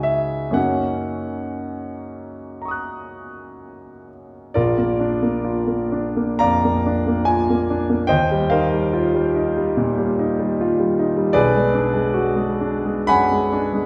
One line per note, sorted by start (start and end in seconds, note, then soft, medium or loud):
0.00 0.52 C#2 soft
0.00 0.52 D#4 soft
0.00 0.52 F#4 soft
0.00 0.55 E5 medium
0.00 0.59 G#5 medium
0.51 4.50 F#2 soft
0.51 4.51 A#3 soft
0.51 4.51 C#4 soft
0.51 4.51 D#4 soft
0.51 4.10 F#5 medium
0.55 4.52 F#4 soft
2.62 4.52 A#5 soft
2.62 4.54 C#6 soft
2.68 4.56 D#6 soft
2.68 4.57 F#6 soft
4.54 6.37 A#1 soft
4.54 5.43 F4 medium
4.54 6.36 A#4 medium
4.54 6.39 D5 medium
4.78 5.13 A#3 soft
5.00 5.35 D4 soft
5.22 5.58 A#3 soft
5.45 5.82 F4 soft
5.67 6.07 A#3 soft
5.92 6.31 D4 soft
6.17 6.55 A#3 soft
6.39 6.77 F2 soft
6.39 7.23 D5 medium
6.39 7.23 F5 medium
6.39 7.27 A#5 medium
6.64 6.99 A#3 soft
6.86 7.20 D4 soft
7.07 7.40 A#3 soft
7.25 7.61 F4 soft
7.25 8.09 G#5 medium
7.50 7.82 A#3 soft
7.70 8.03 D4 soft
7.89 8.10 A#3 soft
8.07 9.73 D#2 medium
8.07 8.48 C5 medium
8.07 8.48 D#5 medium
8.07 8.50 G5 medium
8.31 8.64 G3 soft
8.50 8.86 D#4 soft
8.50 10.94 A#4 medium
8.50 10.94 C5 medium
8.50 10.97 F5 medium
8.72 9.07 G3 soft
8.93 9.27 F4 soft
9.14 9.48 G3 soft
9.36 9.69 D#4 soft
9.57 9.90 G3 soft
9.77 10.10 A#2 soft
9.99 10.32 G3 soft
10.19 10.52 D#4 soft
10.39 10.71 G3 soft
10.61 10.91 F4 soft
10.80 11.10 G3 soft
10.99 11.29 D#4 soft
11.17 11.36 G3 soft
11.33 13.04 B1 medium
11.33 13.04 G#4 medium
11.33 13.04 B4 medium
11.33 13.07 D5 medium
11.55 11.86 G#3 soft
11.74 12.06 D4 soft
11.93 12.27 G#3 soft
12.14 12.50 F#4 soft
12.36 12.75 G#3 soft
12.61 13.00 D4 soft
12.85 13.22 G#3 soft
13.07 13.45 F#2 soft
13.07 13.86 F#5 medium
13.07 13.86 G#5 medium
13.07 13.86 B5 medium
13.32 13.65 G#3 soft
13.52 13.86 D4 soft
13.73 13.86 G#3 soft